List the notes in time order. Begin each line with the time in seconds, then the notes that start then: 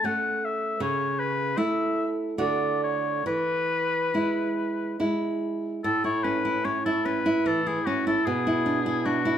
0.04 A3 C#4 F#5
0.45 E5
0.80 C#3 C#5
1.20 B4
1.57 A3 E4 E5
2.38 D3 A3 F#4 D5
2.84 C#5
3.26 E3 B4
4.14 G#3 E4
5.00 G#3 E4
5.84 A2 A4
6.04 E4 C#5
6.24 C#4 B4
6.45 E4
6.65 C#4 C#5
6.85 E4 A4
7.05 C#4 B4
7.26 E4
7.46 E3 A4
7.66 E4 G#4
7.86 C#4 F#4
8.07 E4 A4
8.25 B2 G#4
8.47 E4
8.66 D4
8.86 E4
9.06 D4 F#4
9.25 E4